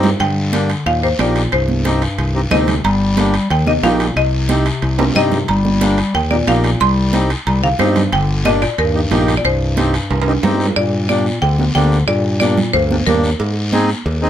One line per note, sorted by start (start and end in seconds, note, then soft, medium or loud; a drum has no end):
0.00 0.13 G2 medium
0.00 0.18 G2 medium
0.00 0.10 G4 medium
0.00 0.21 C5 medium
0.00 low conga medium
0.00 low timbale medium
0.00 short guiro medium
0.20 0.73 G2 medium
0.20 0.83 D3 medium
0.20 0.82 G5 medium
0.20 high timbale medium
0.20 long guiro medium
0.53 0.70 A#3 medium
0.53 0.71 D4 medium
0.53 0.71 G4 medium
0.53 high conga medium
0.53 high timbale medium
0.53 short guiro medium
0.69 high timbale medium
0.69 short guiro medium
0.86 1.13 D#2 medium
0.86 1.02 A#2 medium
0.86 1.02 F5 medium
0.86 high conga soft
0.86 high timbale medium
0.86 long guiro medium
1.02 1.10 G#2 medium
1.02 1.08 A#3 medium
1.02 1.08 D#4 medium
1.02 1.09 G4 medium
1.02 1.11 C5 medium
1.19 1.46 A#1 loud
1.19 1.50 A#2 medium
1.19 1.42 A#3 medium
1.19 1.42 D#4 medium
1.19 1.42 G4 medium
1.19 1.51 D5 medium
1.19 high conga medium
1.19 high timbale medium
1.19 short guiro medium
1.36 high timbale medium
1.36 short guiro medium
1.52 2.05 C2 medium
1.52 2.48 G2 medium
1.52 2.48 C5 medium
1.52 high conga soft
1.52 high timbale medium
1.52 long guiro medium
1.69 high conga medium
1.85 2.03 C4 medium
1.85 2.03 D#4 medium
1.85 2.03 G4 medium
1.85 high conga medium
1.85 high timbale medium
1.85 short guiro medium
2.02 high timbale medium
2.02 short guiro medium
2.18 2.45 C2 medium
2.18 high conga soft
2.18 high timbale medium
2.18 long guiro medium
2.35 2.41 C4 medium
2.35 2.41 D#4 medium
2.35 2.41 G4 medium
2.51 2.78 D2 medium
2.51 2.82 C3 medium
2.51 2.74 C4 medium
2.51 2.75 D#4 medium
2.51 2.75 G4 medium
2.51 2.85 D#5 medium
2.51 high conga medium
2.51 low conga medium
2.51 high timbale medium
2.51 low timbale medium
2.51 short guiro medium
2.68 low conga medium
2.68 high timbale medium
2.68 short guiro medium
2.84 3.37 G1 loud
2.84 3.47 G3 medium
2.84 3.47 A#5 loud
2.84 high conga soft
2.84 high timbale medium
2.84 long guiro medium
3.17 3.35 A#3 medium
3.17 3.35 D4 medium
3.17 3.35 G4 medium
3.17 high conga medium
3.17 high timbale medium
3.17 short guiro medium
3.34 high timbale medium
3.34 short guiro medium
3.50 3.77 D#2 medium
3.50 3.66 D#3 medium
3.50 3.66 G5 medium
3.50 high conga soft
3.50 high timbale medium
3.50 long guiro medium
3.66 3.82 C3 medium
3.66 3.72 A#3 medium
3.66 3.73 D#4 medium
3.66 3.73 G4 medium
3.66 3.84 D#5 medium
3.66 high conga medium
3.83 4.10 A#1 medium
3.83 4.14 A#2 medium
3.83 4.06 A#3 medium
3.83 4.06 D#4 medium
3.83 4.07 G4 medium
3.83 4.17 F5 medium
3.83 high conga medium
3.83 high timbale medium
3.83 low timbale medium
3.83 short guiro medium
4.00 high timbale medium
4.00 short guiro medium
4.16 4.69 C2 medium
4.16 5.11 C3 medium
4.16 5.12 D#5 medium
4.16 high conga soft
4.16 high timbale medium
4.16 long guiro medium
4.49 4.66 C4 medium
4.49 4.67 D#4 medium
4.49 4.67 G4 medium
4.49 high conga medium
4.49 high timbale medium
4.49 short guiro medium
4.66 high timbale medium
4.66 short guiro medium
4.82 5.09 C2 medium
4.82 high conga soft
4.82 high timbale medium
4.82 long guiro medium
4.98 5.04 C4 medium
4.98 5.05 D#4 medium
4.98 5.05 G4 medium
4.98 high conga medium
4.98 high timbale loud
5.10 low timbale medium
5.15 5.42 G2 medium
5.15 5.46 C3 medium
5.15 5.38 C4 medium
5.15 5.38 D#4 medium
5.15 5.39 G4 medium
5.15 5.46 D#5 medium
5.15 low conga medium
5.15 short guiro medium
5.32 low conga medium
5.32 low timbale medium
5.32 short guiro medium
5.48 6.01 G1 medium
5.48 6.11 G3 medium
5.48 6.11 A#5 loud
5.48 high conga soft
5.48 high timbale medium
5.48 long guiro medium
5.65 high conga medium
5.81 5.99 A#3 medium
5.81 5.99 D4 medium
5.81 5.99 G4 medium
5.81 high conga medium
5.81 high timbale medium
5.81 short guiro medium
5.98 high timbale medium
5.98 short guiro medium
6.14 6.41 D#2 medium
6.14 6.23 D#3 medium
6.14 6.22 G5 medium
6.14 high conga soft
6.14 high timbale medium
6.14 long guiro medium
6.30 6.47 A#2 medium
6.30 6.36 A#3 medium
6.30 6.36 D#4 medium
6.30 6.37 G4 medium
6.30 6.46 D5 medium
6.30 high conga medium
6.47 6.74 A#1 medium
6.47 6.79 A#2 medium
6.47 6.70 A#3 medium
6.47 6.70 D#4 medium
6.47 6.71 G4 medium
6.47 6.82 F5 medium
6.47 high conga medium
6.47 high timbale medium
6.47 short guiro medium
6.64 high timbale medium
6.64 short guiro medium
6.80 7.33 C2 medium
6.80 7.31 G3 medium
6.80 7.43 C6 loud
6.80 high conga soft
6.80 high timbale medium
6.80 long guiro medium
7.13 7.30 C4 medium
7.13 7.31 D#4 medium
7.13 7.31 G4 medium
7.13 high conga medium
7.13 high timbale medium
7.13 short guiro medium
7.30 high timbale medium
7.30 short guiro medium
7.46 7.73 C2 medium
7.46 7.62 G3 medium
7.46 7.62 A#5 medium
7.46 high conga soft
7.46 high timbale medium
7.46 long guiro medium
7.62 7.71 D3 medium
7.62 7.68 C4 medium
7.62 7.69 D#4 medium
7.62 7.69 G4 medium
7.62 7.71 F5 medium
7.79 8.06 G2 medium
7.79 8.11 G2 medium
7.79 8.02 C4 medium
7.79 8.02 D#4 medium
7.79 8.03 G4 medium
7.79 8.10 C5 medium
7.79 high conga medium
7.79 low conga medium
7.79 high timbale medium
7.79 low timbale medium
7.79 short guiro medium
7.96 low conga medium
7.96 high timbale medium
7.96 short guiro medium
8.12 8.65 G1 medium
8.12 8.44 D3 medium
8.12 8.43 G5 loud
8.12 high conga soft
8.12 high timbale medium
8.12 long guiro medium
8.45 8.54 A#2 medium
8.45 8.62 A#3 medium
8.45 8.62 D4 medium
8.45 8.63 G4 medium
8.45 8.53 D#5 medium
8.45 high conga medium
8.45 high timbale medium
8.45 short guiro medium
8.62 8.70 A#2 medium
8.62 8.70 D5 medium
8.62 high timbale medium
8.62 short guiro medium
8.78 9.05 D#2 medium
8.78 9.33 G2 medium
8.78 9.39 A#4 medium
8.78 high conga soft
8.78 high timbale medium
8.78 long guiro medium
8.94 9.00 A#3 medium
8.94 9.00 D#4 medium
8.94 9.01 G4 medium
9.11 9.38 A#1 medium
9.11 9.34 A#3 medium
9.11 9.34 D#4 medium
9.11 9.35 G4 medium
9.11 high conga medium
9.11 high timbale medium
9.11 low timbale medium
9.11 short guiro medium
9.28 high timbale medium
9.28 short guiro medium
9.37 9.44 A#2 medium
9.37 9.44 D5 medium
9.44 9.97 C2 medium
9.44 10.39 G2 medium
9.44 10.40 C5 medium
9.44 high conga soft
9.44 high timbale medium
9.44 long guiro medium
9.77 9.94 C4 medium
9.77 9.95 D#4 medium
9.77 9.95 G4 medium
9.77 high conga medium
9.77 high timbale medium
9.77 short guiro medium
9.94 high timbale medium
9.94 short guiro medium
10.11 10.37 C2 medium
10.11 high conga soft
10.11 high timbale medium
10.11 long guiro medium
10.22 high timbale loud
10.27 10.32 C4 medium
10.27 10.33 D#4 medium
10.27 10.33 G4 medium
10.43 10.69 G2 medium
10.43 10.66 C4 medium
10.43 10.66 D#4 medium
10.43 10.67 G4 medium
10.43 high conga medium
10.43 low conga medium
10.43 low timbale loud
10.43 short guiro medium
10.55 low timbale medium
10.60 short guiro medium
10.66 low timbale medium
10.76 11.29 G2 loud
10.76 11.07 A#2 medium
10.76 11.07 D5 medium
10.76 cowbell loud
10.76 long guiro medium
11.09 11.40 A#2 medium
11.09 11.26 A#3 medium
11.09 11.27 D4 medium
11.09 11.27 G4 medium
11.09 11.43 D5 medium
11.09 high conga medium
11.09 short guiro medium
11.26 short guiro medium
11.41 11.68 D2 loud
11.41 11.72 D3 medium
11.41 11.74 G5 loud
11.41 cowbell medium
11.41 long guiro medium
11.58 11.64 A#3 medium
11.58 11.64 D4 medium
11.58 11.65 G4 medium
11.58 high conga medium
11.75 12.02 D2 loud
11.75 12.05 D3 medium
11.75 11.98 A#3 medium
11.75 11.98 D4 medium
11.75 11.98 G4 medium
11.75 12.06 G5 loud
11.75 high conga medium
11.75 short guiro medium
11.92 short guiro medium
12.07 12.61 G2 medium
12.07 12.38 A#2 medium
12.07 12.38 D5 loud
12.07 cowbell loud
12.07 long guiro medium
12.40 12.71 A#2 medium
12.40 12.58 A#3 medium
12.40 12.58 D4 medium
12.40 12.59 G4 medium
12.40 12.74 D5 medium
12.40 high conga medium
12.40 short guiro medium
12.57 low conga medium
12.57 short guiro medium
12.73 13.00 D2 loud
12.73 13.04 G2 medium
12.73 13.08 C5 medium
12.73 cowbell medium
12.73 long guiro medium
12.90 12.96 A#3 medium
12.90 12.96 D4 medium
12.90 12.96 G4 medium
12.90 high conga medium
13.06 13.33 D#2 loud
13.06 13.30 G2 medium
13.06 13.30 A#3 medium
13.06 13.30 D4 medium
13.06 13.30 G4 medium
13.06 13.30 A#4 medium
13.06 high conga medium
13.06 low conga medium
13.06 short guiro medium
13.24 short guiro medium
13.40 13.93 G#2 medium
13.40 cowbell loud
13.40 long guiro medium
13.72 13.90 C4 medium
13.72 13.90 D#4 medium
13.72 13.90 G#4 loud
13.72 high conga medium
13.72 short guiro medium
13.90 short guiro medium
14.06 14.30 D#2 loud
14.06 cowbell medium
14.06 long guiro medium
14.22 14.28 C4 medium
14.22 14.28 D#4 medium
14.22 14.28 G#4 medium